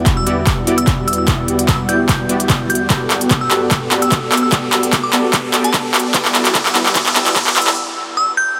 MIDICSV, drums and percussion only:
0, 0, Header, 1, 2, 480
1, 0, Start_track
1, 0, Key_signature, 1, "minor"
1, 0, Tempo, 405405
1, 1516, Time_signature, 4, 2, 24, 8
1, 10180, End_track
2, 0, Start_track
2, 0, Title_t, "Drums"
2, 74, Note_on_c, 9, 36, 93
2, 75, Note_on_c, 9, 39, 57
2, 75, Note_on_c, 9, 42, 74
2, 192, Note_off_c, 9, 36, 0
2, 193, Note_off_c, 9, 39, 0
2, 193, Note_off_c, 9, 42, 0
2, 315, Note_on_c, 9, 42, 56
2, 433, Note_off_c, 9, 42, 0
2, 554, Note_on_c, 9, 36, 92
2, 555, Note_on_c, 9, 39, 64
2, 555, Note_on_c, 9, 42, 78
2, 672, Note_off_c, 9, 36, 0
2, 673, Note_off_c, 9, 39, 0
2, 673, Note_off_c, 9, 42, 0
2, 795, Note_on_c, 9, 42, 61
2, 913, Note_off_c, 9, 42, 0
2, 921, Note_on_c, 9, 42, 62
2, 1034, Note_on_c, 9, 36, 97
2, 1035, Note_off_c, 9, 42, 0
2, 1035, Note_on_c, 9, 39, 59
2, 1035, Note_on_c, 9, 42, 68
2, 1152, Note_off_c, 9, 36, 0
2, 1153, Note_off_c, 9, 39, 0
2, 1153, Note_off_c, 9, 42, 0
2, 1274, Note_on_c, 9, 42, 46
2, 1337, Note_off_c, 9, 42, 0
2, 1337, Note_on_c, 9, 42, 60
2, 1456, Note_off_c, 9, 42, 0
2, 1514, Note_on_c, 9, 36, 93
2, 1515, Note_on_c, 9, 39, 64
2, 1515, Note_on_c, 9, 42, 71
2, 1632, Note_off_c, 9, 36, 0
2, 1633, Note_off_c, 9, 39, 0
2, 1633, Note_off_c, 9, 42, 0
2, 1755, Note_on_c, 9, 42, 62
2, 1873, Note_off_c, 9, 42, 0
2, 1881, Note_on_c, 9, 42, 60
2, 1994, Note_on_c, 9, 36, 96
2, 1995, Note_off_c, 9, 42, 0
2, 1995, Note_on_c, 9, 39, 66
2, 1995, Note_on_c, 9, 42, 75
2, 2112, Note_off_c, 9, 36, 0
2, 2114, Note_off_c, 9, 39, 0
2, 2114, Note_off_c, 9, 42, 0
2, 2235, Note_on_c, 9, 42, 56
2, 2353, Note_off_c, 9, 42, 0
2, 2474, Note_on_c, 9, 36, 93
2, 2475, Note_on_c, 9, 39, 69
2, 2475, Note_on_c, 9, 42, 75
2, 2593, Note_off_c, 9, 36, 0
2, 2593, Note_off_c, 9, 39, 0
2, 2593, Note_off_c, 9, 42, 0
2, 2715, Note_on_c, 9, 42, 60
2, 2833, Note_off_c, 9, 42, 0
2, 2841, Note_on_c, 9, 42, 62
2, 2954, Note_on_c, 9, 36, 99
2, 2955, Note_off_c, 9, 42, 0
2, 2955, Note_on_c, 9, 39, 69
2, 2955, Note_on_c, 9, 42, 69
2, 3073, Note_off_c, 9, 36, 0
2, 3073, Note_off_c, 9, 39, 0
2, 3073, Note_off_c, 9, 42, 0
2, 3195, Note_on_c, 9, 42, 43
2, 3258, Note_off_c, 9, 42, 0
2, 3258, Note_on_c, 9, 42, 60
2, 3376, Note_off_c, 9, 42, 0
2, 3434, Note_on_c, 9, 36, 93
2, 3435, Note_on_c, 9, 39, 74
2, 3435, Note_on_c, 9, 42, 78
2, 3553, Note_off_c, 9, 36, 0
2, 3554, Note_off_c, 9, 39, 0
2, 3554, Note_off_c, 9, 42, 0
2, 3675, Note_on_c, 9, 39, 70
2, 3675, Note_on_c, 9, 42, 59
2, 3794, Note_off_c, 9, 39, 0
2, 3794, Note_off_c, 9, 42, 0
2, 3801, Note_on_c, 9, 42, 61
2, 3915, Note_off_c, 9, 42, 0
2, 3915, Note_on_c, 9, 36, 96
2, 3915, Note_on_c, 9, 39, 76
2, 3915, Note_on_c, 9, 42, 73
2, 4033, Note_off_c, 9, 36, 0
2, 4034, Note_off_c, 9, 39, 0
2, 4034, Note_off_c, 9, 42, 0
2, 4155, Note_on_c, 9, 39, 73
2, 4155, Note_on_c, 9, 42, 55
2, 4274, Note_off_c, 9, 39, 0
2, 4274, Note_off_c, 9, 42, 0
2, 4395, Note_on_c, 9, 36, 99
2, 4395, Note_on_c, 9, 39, 76
2, 4395, Note_on_c, 9, 42, 77
2, 4513, Note_off_c, 9, 36, 0
2, 4513, Note_off_c, 9, 39, 0
2, 4513, Note_off_c, 9, 42, 0
2, 4634, Note_on_c, 9, 39, 75
2, 4634, Note_on_c, 9, 42, 62
2, 4753, Note_off_c, 9, 39, 0
2, 4753, Note_off_c, 9, 42, 0
2, 4760, Note_on_c, 9, 42, 63
2, 4875, Note_off_c, 9, 42, 0
2, 4875, Note_on_c, 9, 36, 95
2, 4875, Note_on_c, 9, 39, 73
2, 4875, Note_on_c, 9, 42, 72
2, 4993, Note_off_c, 9, 36, 0
2, 4993, Note_off_c, 9, 39, 0
2, 4993, Note_off_c, 9, 42, 0
2, 5115, Note_on_c, 9, 39, 77
2, 5115, Note_on_c, 9, 42, 45
2, 5178, Note_off_c, 9, 42, 0
2, 5178, Note_on_c, 9, 42, 57
2, 5233, Note_off_c, 9, 39, 0
2, 5296, Note_off_c, 9, 42, 0
2, 5354, Note_on_c, 9, 36, 101
2, 5354, Note_on_c, 9, 39, 81
2, 5354, Note_on_c, 9, 42, 78
2, 5473, Note_off_c, 9, 36, 0
2, 5473, Note_off_c, 9, 39, 0
2, 5473, Note_off_c, 9, 42, 0
2, 5595, Note_on_c, 9, 39, 81
2, 5595, Note_on_c, 9, 42, 63
2, 5713, Note_off_c, 9, 39, 0
2, 5713, Note_off_c, 9, 42, 0
2, 5721, Note_on_c, 9, 42, 64
2, 5834, Note_off_c, 9, 42, 0
2, 5834, Note_on_c, 9, 36, 101
2, 5834, Note_on_c, 9, 39, 85
2, 5834, Note_on_c, 9, 42, 78
2, 5953, Note_off_c, 9, 36, 0
2, 5953, Note_off_c, 9, 39, 0
2, 5953, Note_off_c, 9, 42, 0
2, 6074, Note_on_c, 9, 39, 79
2, 6074, Note_on_c, 9, 42, 59
2, 6193, Note_off_c, 9, 39, 0
2, 6193, Note_off_c, 9, 42, 0
2, 6314, Note_on_c, 9, 36, 97
2, 6315, Note_on_c, 9, 39, 85
2, 6315, Note_on_c, 9, 42, 79
2, 6433, Note_off_c, 9, 36, 0
2, 6433, Note_off_c, 9, 39, 0
2, 6433, Note_off_c, 9, 42, 0
2, 6554, Note_on_c, 9, 39, 84
2, 6554, Note_on_c, 9, 42, 61
2, 6673, Note_off_c, 9, 39, 0
2, 6673, Note_off_c, 9, 42, 0
2, 6681, Note_on_c, 9, 42, 62
2, 6794, Note_on_c, 9, 36, 106
2, 6795, Note_off_c, 9, 42, 0
2, 6795, Note_on_c, 9, 39, 85
2, 6795, Note_on_c, 9, 42, 74
2, 6913, Note_off_c, 9, 36, 0
2, 6913, Note_off_c, 9, 39, 0
2, 6913, Note_off_c, 9, 42, 0
2, 7035, Note_on_c, 9, 39, 91
2, 7035, Note_on_c, 9, 42, 46
2, 7097, Note_off_c, 9, 42, 0
2, 7097, Note_on_c, 9, 42, 63
2, 7153, Note_off_c, 9, 39, 0
2, 7216, Note_off_c, 9, 42, 0
2, 7274, Note_on_c, 9, 36, 99
2, 7274, Note_on_c, 9, 39, 96
2, 7274, Note_on_c, 9, 42, 85
2, 7392, Note_off_c, 9, 36, 0
2, 7392, Note_off_c, 9, 39, 0
2, 7392, Note_off_c, 9, 42, 0
2, 7400, Note_on_c, 9, 39, 81
2, 7514, Note_off_c, 9, 39, 0
2, 7514, Note_on_c, 9, 39, 91
2, 7514, Note_on_c, 9, 42, 70
2, 7633, Note_off_c, 9, 39, 0
2, 7633, Note_off_c, 9, 42, 0
2, 7640, Note_on_c, 9, 39, 78
2, 7640, Note_on_c, 9, 42, 71
2, 7754, Note_on_c, 9, 36, 103
2, 7755, Note_off_c, 9, 39, 0
2, 7755, Note_off_c, 9, 42, 0
2, 7755, Note_on_c, 9, 39, 94
2, 7755, Note_on_c, 9, 42, 84
2, 7873, Note_off_c, 9, 36, 0
2, 7873, Note_off_c, 9, 39, 0
2, 7873, Note_off_c, 9, 42, 0
2, 7880, Note_on_c, 9, 39, 77
2, 7995, Note_off_c, 9, 39, 0
2, 7995, Note_on_c, 9, 39, 90
2, 7995, Note_on_c, 9, 42, 63
2, 8113, Note_off_c, 9, 39, 0
2, 8113, Note_off_c, 9, 42, 0
2, 8121, Note_on_c, 9, 39, 80
2, 8234, Note_off_c, 9, 39, 0
2, 8234, Note_on_c, 9, 36, 98
2, 8234, Note_on_c, 9, 39, 97
2, 8234, Note_on_c, 9, 42, 83
2, 8353, Note_off_c, 9, 36, 0
2, 8353, Note_off_c, 9, 39, 0
2, 8353, Note_off_c, 9, 42, 0
2, 8360, Note_on_c, 9, 39, 84
2, 8474, Note_off_c, 9, 39, 0
2, 8474, Note_on_c, 9, 39, 93
2, 8474, Note_on_c, 9, 42, 68
2, 8593, Note_off_c, 9, 39, 0
2, 8593, Note_off_c, 9, 42, 0
2, 8600, Note_on_c, 9, 39, 85
2, 8600, Note_on_c, 9, 42, 66
2, 8714, Note_off_c, 9, 39, 0
2, 8714, Note_off_c, 9, 42, 0
2, 8714, Note_on_c, 9, 36, 104
2, 8714, Note_on_c, 9, 39, 92
2, 8714, Note_on_c, 9, 42, 79
2, 8833, Note_off_c, 9, 36, 0
2, 8833, Note_off_c, 9, 39, 0
2, 8833, Note_off_c, 9, 42, 0
2, 8840, Note_on_c, 9, 39, 84
2, 8954, Note_off_c, 9, 39, 0
2, 8954, Note_on_c, 9, 39, 102
2, 8954, Note_on_c, 9, 42, 50
2, 9017, Note_off_c, 9, 42, 0
2, 9017, Note_on_c, 9, 42, 65
2, 9072, Note_off_c, 9, 39, 0
2, 9080, Note_on_c, 9, 39, 89
2, 9136, Note_off_c, 9, 42, 0
2, 9199, Note_off_c, 9, 39, 0
2, 10180, End_track
0, 0, End_of_file